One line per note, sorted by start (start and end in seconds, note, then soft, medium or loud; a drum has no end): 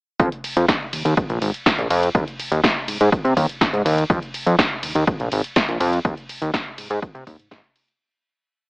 0.20 0.29 F2 loud
0.20 kick loud
0.20 closed hi-hat medium
0.32 closed hi-hat soft
0.44 open hi-hat loud
0.44 ride medium
0.57 0.66 F2 medium
0.57 closed hi-hat medium
0.68 kick loud
0.68 snare loud
0.68 closed hi-hat medium
0.93 1.03 D#2 soft
0.93 open hi-hat medium
0.93 ride medium
1.05 1.14 D#2 medium
1.05 closed hi-hat medium
1.17 1.27 A#1 soft
1.17 kick loud
1.17 closed hi-hat medium
1.30 1.39 A#1 medium
1.30 closed hi-hat soft
1.41 1.51 G#1 medium
1.41 open hi-hat loud
1.41 ride medium
1.54 closed hi-hat medium
1.66 kick loud
1.66 snare loud
1.66 closed hi-hat medium
1.78 1.88 A#1 medium
1.78 closed hi-hat soft
1.90 2.09 F2 loud
1.90 open hi-hat loud
1.90 ride medium
2.03 closed hi-hat medium
2.15 2.24 D#2 loud
2.15 kick loud
2.15 closed hi-hat medium
2.28 closed hi-hat soft
2.40 open hi-hat loud
2.40 ride medium
2.52 2.61 D#2 medium
2.52 closed hi-hat medium
2.64 kick loud
2.64 snare loud
2.64 closed hi-hat medium
2.88 2.98 G#2 soft
2.88 open hi-hat loud
2.88 ride medium
3.01 3.10 G#2 medium
3.01 closed hi-hat medium
3.12 kick loud
3.12 closed hi-hat medium
3.25 3.34 C3 medium
3.25 closed hi-hat soft
3.37 3.46 D#2 medium
3.37 kick medium
3.37 open hi-hat loud
3.37 ride medium
3.49 closed hi-hat medium
3.61 3.71 G#2 soft
3.61 kick loud
3.61 snare loud
3.61 closed hi-hat medium
3.73 3.83 G#2 medium
3.73 closed hi-hat soft
3.85 4.04 D#2 loud
3.85 open hi-hat loud
3.85 ride medium
3.98 closed hi-hat medium
4.10 4.19 F2 loud
4.10 kick loud
4.10 closed hi-hat medium
4.22 closed hi-hat soft
4.34 open hi-hat loud
4.34 ride medium
4.46 4.56 F2 medium
4.46 closed hi-hat medium
4.59 kick loud
4.59 snare loud
4.59 closed hi-hat medium
4.83 4.93 D#2 soft
4.83 open hi-hat loud
4.83 ride medium
4.95 5.04 D#2 medium
4.95 closed hi-hat medium
5.07 5.17 A#1 soft
5.07 kick loud
5.07 closed hi-hat medium
5.20 5.29 A#1 medium
5.20 closed hi-hat soft
5.32 5.42 G#1 medium
5.32 open hi-hat loud
5.32 ride medium
5.44 closed hi-hat medium
5.56 kick loud
5.56 snare loud
5.56 closed hi-hat medium
5.69 5.78 A#1 medium
5.69 closed hi-hat soft
5.80 5.99 F2 loud
5.80 open hi-hat loud
5.80 ride medium
5.93 closed hi-hat medium
6.05 6.15 D#2 loud
6.05 kick loud
6.05 closed hi-hat medium
6.17 closed hi-hat soft
6.29 open hi-hat loud
6.29 ride medium
6.42 6.51 D#2 medium
6.42 closed hi-hat medium
6.54 kick loud
6.54 snare loud
6.54 closed hi-hat medium
6.78 6.88 G#2 soft
6.78 open hi-hat loud
6.78 ride medium
6.90 7.00 G#2 medium
6.90 closed hi-hat medium
7.02 kick loud
7.02 closed hi-hat medium
7.15 7.24 C3 medium
7.15 closed hi-hat soft
7.27 7.37 D#2 medium
7.27 kick medium
7.27 open hi-hat loud
7.27 ride medium
7.39 7.49 G#2 soft
7.39 closed hi-hat soft
7.51 7.61 G#2 loud
7.51 kick loud
7.51 snare loud
7.51 closed hi-hat medium
7.64 closed hi-hat soft
7.76 open hi-hat loud
7.76 ride medium
7.88 closed hi-hat medium